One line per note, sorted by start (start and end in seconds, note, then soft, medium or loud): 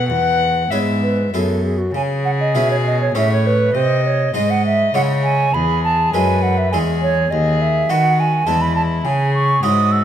0.00 0.10 B2 medium
0.08 0.71 E2 medium
0.08 0.68 E2 soft
0.08 0.64 B4 medium
0.08 0.72 F#5 medium
0.70 1.32 G#2 medium
0.70 1.29 G#2 soft
0.70 1.16 B3 soft
0.70 1.16 E4 soft
0.70 1.16 G#4 soft
0.70 0.78 C#5 medium
0.70 1.33 E5 medium
1.02 1.32 B4 medium
1.34 1.91 F#2 soft
1.34 1.94 F#2 medium
1.34 1.78 B3 soft
1.34 1.78 E4 soft
1.34 1.78 G#4 soft
1.34 1.64 A4 medium
1.65 1.80 G#4 medium
1.78 1.94 F#4 medium
1.93 2.51 C#3 medium
1.93 2.57 C#3 medium
1.93 3.16 G#4 medium
1.93 2.02 G#5 medium
2.25 2.31 F#5 medium
2.40 2.57 D#5 medium
2.55 3.11 B2 medium
2.55 3.15 B2 medium
2.55 2.98 C#4 soft
2.55 2.98 E4 soft
2.55 2.99 G#4 soft
2.55 2.70 E5 medium
2.71 2.77 C#5 medium
2.86 3.00 D#5 medium
3.01 3.15 C#5 medium
3.15 3.71 A2 medium
3.15 3.74 A2 medium
3.15 3.58 C#4 soft
3.15 3.58 E4 soft
3.15 3.59 G#4 soft
3.15 3.74 C#5 medium
3.15 3.30 E5 medium
3.33 3.48 C#5 medium
3.47 3.78 B4 medium
3.74 4.31 C3 medium
3.74 4.34 C3 medium
3.74 4.05 C5 medium
3.74 4.33 D#5 medium
4.05 4.34 C#5 medium
4.34 4.90 G#2 medium
4.34 4.94 G#2 medium
4.34 4.78 G#3 soft
4.34 4.78 D#4 soft
4.34 4.78 G#4 soft
4.34 4.52 D#5 medium
4.34 4.96 D#5 medium
4.50 4.65 F#5 medium
4.66 4.94 E5 medium
4.94 5.50 C#3 medium
4.94 5.53 C#3 medium
4.94 5.50 G#3 soft
4.94 5.50 E4 soft
4.94 5.51 G#4 soft
4.94 5.54 C#5 medium
4.94 5.02 F#5 medium
5.23 5.55 G#5 medium
5.54 6.10 E2 medium
5.54 6.13 E2 medium
5.54 6.15 G#4 medium
5.54 5.83 B5 medium
5.84 6.13 A5 medium
6.13 6.75 F#2 medium
6.13 6.69 F#2 medium
6.13 6.56 G#3 soft
6.13 6.57 E4 soft
6.13 6.57 G#4 soft
6.13 6.74 B4 medium
6.13 6.44 G#5 medium
6.43 6.59 F#5 medium
6.58 6.71 E5 medium
6.72 7.28 E2 medium
6.72 7.32 E2 medium
6.72 7.15 G#3 soft
6.72 7.16 E4 soft
6.72 7.30 G#4 medium
6.72 7.16 G#4 soft
6.72 6.78 G#5 medium
7.02 7.32 C#5 medium
7.30 7.89 D#2 medium
7.30 7.86 D#2 medium
7.30 7.91 G#4 medium
7.30 7.63 D#5 medium
7.62 7.92 E5 medium
7.90 8.43 D#3 medium
7.90 8.46 D#3 medium
7.90 8.47 F#4 medium
7.90 8.31 F#4 soft
7.90 8.31 B4 soft
7.90 8.21 F#5 medium
8.20 8.49 G#5 medium
8.47 9.01 E2 medium
8.47 9.04 E2 medium
8.47 9.01 G#3 soft
8.47 9.01 E4 soft
8.47 9.07 E4 medium
8.47 9.01 B4 soft
8.47 8.63 A5 medium
8.61 8.75 B5 medium
8.76 8.82 A5 medium
9.04 9.59 C#3 medium
9.04 9.62 C#3 medium
9.04 9.65 G#4 medium
9.04 9.33 G#5 medium
9.35 9.63 C#6 medium
9.63 10.04 G#2 medium
9.63 10.04 G#3 soft
9.63 10.04 E4 soft
9.63 10.04 F#4 medium
9.63 10.04 C#5 soft
9.63 9.93 D#6 medium
9.92 10.04 E6 medium